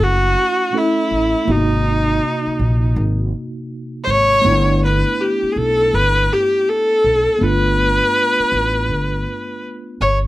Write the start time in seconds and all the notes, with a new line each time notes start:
Already playing: A3 C#4 E4 F#4
0.00 F#1 F#4
0.73 A3 C#4 E4 A4
0.78 E4
1.11 A1
1.45 G#1 A#3 B3 D#4
1.50 C3 D#4 F#4
2.47 muted upright bass stroke
2.59 A#1
2.96 G#1
4.04 G#1 C5
4.10 C#5
4.42 G1 A3 B3 D4
4.46 E4
4.84 B4
5.21 G4
5.43 muted upright bass stroke
5.52 G#4
5.56 B1 A4
5.94 G1 B4
6.32 G4
6.69 A4
7.04 B1
7.39 G1 A3 B3 D4
7.43 F4 B4
8.39 muted upright bass stroke
8.52 A1
8.89 G1
10.00 G1 C#5